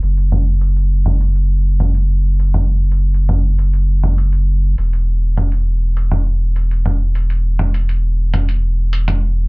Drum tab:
HH |x-x-----x-x-----x-x-----x-x-----|x-x----x--x-----x-x-----x-x-----|x-x-----x-x-----x-------x-x-----|x-x-----x-x-----x-x-----x-x-----|
T2 |----o---------o---------o-------|--o---------o---------o---------|--------o---------o---------o---|------o---------o---------o-----|